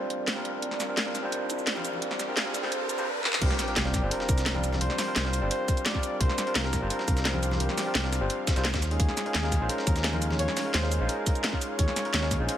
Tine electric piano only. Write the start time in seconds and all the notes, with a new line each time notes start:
Already playing: G3 C4 D4 F4 C5
0.35 G3 C4 D4 F4 A#4
0.88 G3 C4 D4 F4 A#4
1.06 G3 C4 D4 F4 A#4
1.22 G3 C4 D4 F4 C5
1.75 G3 C4 D4 F4 A#4
2.28 G3 C4 D4 F4 A#4
2.45 G3 C4 D4 F4 A#4
2.63 G3 C4 D4 F4 C5
2.97 G3 C4 D4 F4 C5
3.41 G3 C4 D4 F4 A#4
3.67 G3 C4 D4 F4 A#4
3.85 G3 C4 D4 F4 A#4
4.02 G3 C4 D4 F4 C5
4.54 G3 C4 D4 F4 A#4
5.07 G3 C4 D4 F4 A#4
5.24 G3 C4 D4 F4 A#4
5.41 G3 C4 D4 F4 C5
5.93 G3 C4 D4 F4 A#4
6.46 G3 C4 D4 F4 A#4
6.64 G3 C4 D4 F4 A#4
6.81 G3 C4 D4 F4 C5
7.33 G3 C4 D4 F4 A#4
7.86 G3 C4 D4 F4 A#4
8.03 G3 C4 D4 F4 A#4
8.21 G3 C4 D4 F4 C5
8.56 G3 C4 D4 F4 C5
8.90 G#3 C#4 D#4 F4 G#4
9.25 G#3 C#4 D#4 F4 A#4
9.43 G#3 C#4 D#4 F4 A#4
9.60 G#3 C#4 D#4 F4 C5
10.12 G#3 C#4 D#4 F4 A#4
10.65 G#3 C#4 D#4 F4 A#4
10.82 G#3 C#4 D#4 F4 A#4
10.99 G#3 C#4 D#4 F4 C5
11.52 G#3 C#4 D#4 F4 A#4
12.04 G#3 C#4 D#4 F4 A#4
12.22 G#3 C#4 D#4 F4 A#4
12.39 G#3 C#4 D#4 F4 C5